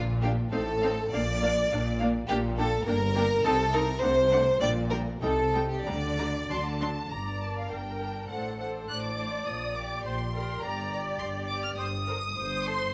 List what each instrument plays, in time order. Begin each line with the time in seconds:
Already playing: double bass section A#1, cello section A#2
0.22 viola section A#3 D4, violin section G4 F5
0.52 double bass section A1, cello section A2, viola section C4 D#4, violin section A4 F5
0.82 viola section C4 D#4, violin section F5
1.12 double bass section A#1, cello section A#2, viola section A#3 D4, violin section D5 F5
1.42 viola section A#3 D4, violin section F5
1.70 double bass section A#1, cello section A#2, viola section A#3 D4, violin section F5
1.99 viola section A#3 D4, violin section F5
2.28 double bass section A#1, cello section A#2, viola section A#3 D4, violin section G4 G5
2.58 viola section A#3 D4, violin section A4 G5
2.85 double bass section G1, cello section G2, viola section A#3 D4, violin section A#4 G5
3.15 viola section A#3 D4, violin section G5
3.44 double bass section C2, cello section C3, viola section C4 D#4, violin section A4 A5
3.73 viola section C4 D#4, violin section A#4 A5
4.01 double bass section C2, cello section C3, viola section A3 D4, violin section C5 F#5
4.32 viola section A3 D4, violin section F#5
4.61 double bass section A#1, cello section A#2, viola section G3 D4, violin section D5 G5
4.90 viola section G3 D4, violin section A#4 G5
5.21 double bass section C2, cello section C3, viola section G3 D#4, violin section A4 G5
5.54 viola section G3 D#4, violin section G5
5.70 violin section G4
5.85 double bass section D2, cello section D3, viola section G3 D4, violin section D5 A#5
6.18 viola section G3 D4, violin section A#5
6.49 double bass section D2, cello section D3, viola section F#3 D4, violin section A5 C6
6.66 violin section A5
6.80 viola section F#3 D4, violin section C6
7.11 double bass section G1, cello section G2, viola section D5, violin section A#5
7.40 violin section D4 A#4 A5
7.58 violin section F5
7.71 double bass section G1, cello section G2, viola section A#4, violin section G5
7.99 violin section D4 A#4
8.29 double bass section A1, cello section A2, violin section D4 C5 F#5, viola section A4
8.58 violin section D4 C5 F#5
8.89 double bass section A1, cello section A2, viola section D5, violin section F#6
9.03 violin section D6
9.16 violin section D4 C5
9.46 double bass section A#1, cello section A#2, violin section D#6
9.74 violin section G4 D5 D6
10.04 double bass section A#1, cello section A#2, viola section C5, violin section C6
10.33 violin section G4 D5, viola section A#4
10.62 double bass section G1, cello section G2, violin section G4 D5 A#5, viola section D5
10.92 violin section G4 D5 A#5
11.19 double bass section G1, cello section G2, violin section C6
11.48 violin section G4 D5 D6
11.63 violin section F6
11.77 double bass section G1, cello section G2, viola section C5, violin section D#6
12.08 violin section A4 C5, viola section A#4
12.36 double bass section G1, cello section G2, viola section C5
12.65 violin section A4 C5 C6